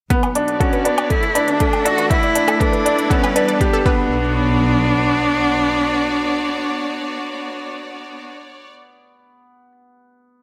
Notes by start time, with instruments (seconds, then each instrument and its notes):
0.10 double bass section B1, string section B3, upright piano B3, synth arpeggio sound B4, kick, closed hi-hat
0.23 synth arpeggio sound B4, closed hi-hat, low woodblock
0.35 upright piano D4, synth arpeggio sound D5, closed hi-hat
0.48 string section D5, closed hi-hat
0.55 string section F#4 C#5
0.60 cello C#4, upright piano F#4, synth arpeggio sound A4, kick, closed hi-hat
0.73 synth arpeggio sound B4, closed hi-hat
0.85 cello B3, upright piano D4, synth arpeggio sound B4, closed hi-hat
0.98 synth arpeggio sound D5, closed hi-hat, low woodblock
1.10 upright piano A3, string section D4, cello E4, kick, closed hi-hat
1.23 synth arpeggio sound A4, closed hi-hat
1.27 string section A4
1.35 double bass section D2, upright piano D4, synth arpeggio sound B4, closed hi-hat
1.48 cello D4, synth arpeggio sound B4, closed hi-hat
1.54 string section E5 F#5
1.60 upright piano A3, synth arpeggio sound D5, kick, closed hi-hat
1.73 closed hi-hat, low woodblock
1.85 double bass section A1, upright piano D4, cello F#4, synth arpeggio sound A4, closed hi-hat
1.98 synth arpeggio sound B4, closed hi-hat
2.10 string section A3, upright piano E4, cello E4, synth arpeggio sound B4, kick, closed hi-hat
2.23 synth arpeggio sound D5, closed hi-hat
2.35 upright piano D4, closed hi-hat
2.48 synth arpeggio sound A4, closed hi-hat, low woodblock
2.54 string section E4 B4 D5
2.60 upright piano A3, cello D4, synth arpeggio sound B4, kick, closed hi-hat
2.72 synth arpeggio sound B4, closed hi-hat
2.86 double bass section B1, upright piano D4, synth arpeggio sound D5, closed hi-hat
2.99 closed hi-hat
3.10 string section G3, upright piano B3, cello C#4, synth arpeggio sound A4, kick, closed hi-hat
3.23 synth arpeggio sound B4, closed hi-hat, low woodblock
3.36 double bass section E2, cello B3, upright piano D4, synth arpeggio sound B4, closed hi-hat
3.48 synth arpeggio sound D5, closed hi-hat
3.56 string section D4 A4
3.61 upright piano G4, kick, closed hi-hat
3.73 synth arpeggio sound A4, closed hi-hat
3.85 double bass section B1, upright piano B3, string section B3, cello D4, synth arpeggio sound B4, kick
3.93 string section F#4
4.27 string section C#5
4.34 string section D5